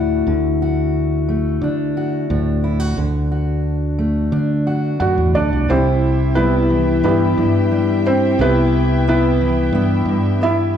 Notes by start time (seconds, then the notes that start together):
Already playing: D2 A2 D3 A3 D4 E4 F#4
0.27 D2 D3
0.62 F#4
1.29 A3
1.61 D3 D4
1.97 F#4
2.30 D2 A2 D4
2.64 E4
2.80 F#4
2.97 D2 D3 D4
3.32 F#4
3.99 A3
4.32 D3 D4
4.67 F#4
5.00 F#2 A2 D4 F#4 F#5
5.18 E2
5.35 D2 D4 F#4 D5
5.53 C2
5.68 C2 C3 C4 E4 G4 C5 E5 G5
6.35 G3 B3 E4 B4
6.70 E3
7.03 G2 G3 B3 E4 G4 B4
7.37 G2
7.72 G3
8.07 C4 C5
8.39 C2 C3 B3 E4 G4 B4
9.08 B3 E4 B4
9.40 E3
9.72 G2 B3
10.05 G2
10.41 B3 E4 E5